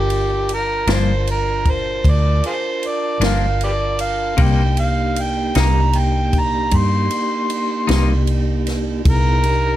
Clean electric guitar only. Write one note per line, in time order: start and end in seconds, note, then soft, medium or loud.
0.88 1.12 G2 medium
0.88 1.11 F3 medium
0.88 1.11 A#3 medium
0.88 1.11 D4 medium
3.21 3.45 G2 medium
3.21 3.46 F3 medium
3.21 3.45 A#3 medium
3.21 3.45 D4 medium
4.37 4.61 C3 medium
4.37 4.62 G3 medium
4.37 4.62 A#3 medium
4.37 4.62 D#4 medium
5.56 5.79 C3 medium
5.56 5.79 G3 soft
5.56 5.79 A#3 medium
5.56 5.79 D#4 medium
7.87 8.13 C3 medium
7.87 8.12 G3 medium
7.87 8.12 A#3 medium
7.87 8.12 D#4 medium